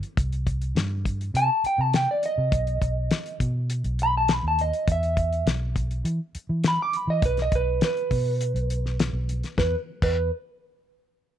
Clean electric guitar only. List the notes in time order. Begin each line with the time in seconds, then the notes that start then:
1.37 A5
1.66 G5
1.81 A5
1.95 G5
2.11 D5
2.26 D#5
4.03 B5
4.17 A5
4.33 B5
4.48 A5
4.61 D#5
4.92 E5
6.68 B5
6.82 D6
6.97 B5
7.10 D#5
7.25 B4
7.42 D#5
7.55 B4
7.84 B4
9.59 B4
10.03 B4